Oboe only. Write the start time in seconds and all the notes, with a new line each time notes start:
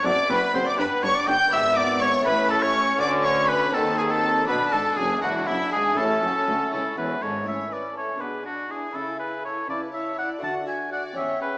0.06 D5
0.30 B4
0.54 C5
0.67 D5
0.79 B4
1.03 C#5
1.15 D5
1.28 G5
1.53 E5
1.77 D5
2.02 C#5
2.26 B4
2.51 A4
2.62 C#5
3.00 D5
3.25 C#5
3.49 B4
3.74 A4
3.98 G#4
4.11 A4
4.47 B4
4.72 A4
4.96 G#4
5.21 F#4
5.47 E4
5.72 G#4
5.97 A4
6.73 A4
6.98 B4
7.23 C#5
7.48 E5
7.73 D5
7.97 C#5
8.21 B4
8.46 F#4
8.71 G#4
8.95 A4
9.20 B4
9.45 C#5
9.70 D5
9.94 E5
10.18 F#5
10.43 A5
10.68 G#5
10.92 F#5
11.17 E5
11.42 B4